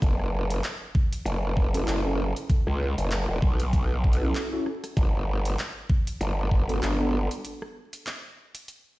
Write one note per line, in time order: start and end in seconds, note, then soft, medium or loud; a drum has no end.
0.02 0.62 F#1 loud
0.02 kick loud
0.02 closed hi-hat medium
0.20 cross-stick soft
0.50 closed hi-hat medium
0.64 clap loud
0.64 closed hi-hat medium
0.95 kick loud
1.12 closed hi-hat medium
1.25 1.85 F#1 loud
1.25 closed hi-hat soft
1.57 kick medium
1.74 2.01 C#4 medium
1.74 2.01 E4 medium
1.74 2.01 F#4 medium
1.74 2.01 A4 medium
1.74 closed hi-hat medium
1.87 2.33 F#1 loud
1.87 clap loud
1.87 closed hi-hat medium
2.05 2.20 C#4 medium
2.05 2.20 E4 medium
2.05 2.20 F#4 medium
2.05 2.20 A4 loud
2.36 closed hi-hat medium
2.50 kick loud
2.50 closed hi-hat medium
2.67 2.95 C#2 loud
2.67 cross-stick medium
2.98 3.26 F#1 loud
2.98 closed hi-hat medium
3.11 clap loud
3.11 closed hi-hat medium
3.29 3.40 E1 loud
3.42 4.33 B1 loud
3.42 kick loud
3.60 closed hi-hat medium
3.73 kick medium
3.73 closed hi-hat soft
4.04 kick medium
4.13 closed hi-hat medium
4.22 4.48 C#4 medium
4.22 4.48 E4 medium
4.22 4.48 F#4 medium
4.22 4.48 A4 loud
4.35 clap loud
4.52 4.67 C#4 medium
4.52 4.67 E4 medium
4.52 4.67 F#4 medium
4.52 4.67 A4 medium
4.66 cross-stick soft
4.84 cross-stick soft
4.84 closed hi-hat medium
4.97 5.57 G1 loud
4.97 kick loud
4.97 closed hi-hat medium
5.45 closed hi-hat medium
5.59 clap loud
5.59 closed hi-hat medium
5.90 kick loud
6.07 closed hi-hat medium
6.21 6.80 G1 loud
6.21 closed hi-hat soft
6.51 kick medium
6.69 6.96 B3 medium
6.69 6.96 D4 medium
6.69 6.96 F#4 medium
6.69 6.96 A4 loud
6.69 closed hi-hat medium
6.83 7.28 G1 medium
6.83 clap loud
6.83 closed hi-hat medium
7.00 7.14 B3 medium
7.00 7.14 D4 medium
7.00 7.14 F#4 medium
7.00 7.14 A4 medium
7.31 closed hi-hat medium
7.45 closed hi-hat medium
7.62 cross-stick medium
7.93 closed hi-hat medium
8.07 clap loud
8.07 closed hi-hat medium
8.55 closed hi-hat medium
8.68 closed hi-hat medium